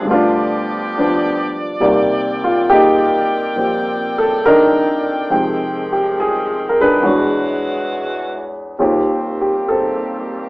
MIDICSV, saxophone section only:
0, 0, Header, 1, 2, 480
1, 0, Start_track
1, 0, Tempo, 872093
1, 1000, Time_signature, 4, 2, 24, 8
1, 5775, End_track
2, 0, Start_track
2, 0, Title_t, "Saxophone section"
2, 0, Program_c, 0, 65
2, 0, Note_on_c, 0, 53, 58
2, 41, Note_on_c, 0, 74, 57
2, 42, Note_on_c, 0, 55, 54
2, 42, Note_on_c, 0, 59, 53
2, 43, Note_on_c, 0, 67, 67
2, 904, Note_off_c, 0, 53, 0
2, 904, Note_off_c, 0, 55, 0
2, 904, Note_off_c, 0, 59, 0
2, 904, Note_off_c, 0, 67, 0
2, 997, Note_on_c, 0, 60, 57
2, 998, Note_on_c, 0, 79, 72
2, 1004, Note_on_c, 0, 58, 61
2, 2898, Note_off_c, 0, 74, 0
2, 2902, Note_off_c, 0, 58, 0
2, 2915, Note_on_c, 0, 51, 54
2, 2915, Note_on_c, 0, 56, 55
2, 2919, Note_on_c, 0, 53, 63
2, 3856, Note_off_c, 0, 60, 0
2, 3857, Note_off_c, 0, 79, 0
2, 3868, Note_off_c, 0, 51, 0
2, 3870, Note_off_c, 0, 53, 0
2, 3876, Note_on_c, 0, 52, 61
2, 3876, Note_on_c, 0, 66, 62
2, 4740, Note_off_c, 0, 52, 0
2, 4740, Note_off_c, 0, 56, 0
2, 4740, Note_off_c, 0, 66, 0
2, 4833, Note_on_c, 0, 67, 65
2, 4836, Note_on_c, 0, 51, 61
2, 4836, Note_on_c, 0, 58, 56
2, 4837, Note_on_c, 0, 60, 50
2, 4839, Note_on_c, 0, 55, 57
2, 5775, Note_off_c, 0, 51, 0
2, 5775, Note_off_c, 0, 55, 0
2, 5775, Note_off_c, 0, 58, 0
2, 5775, Note_off_c, 0, 60, 0
2, 5775, Note_off_c, 0, 67, 0
2, 5775, End_track
0, 0, End_of_file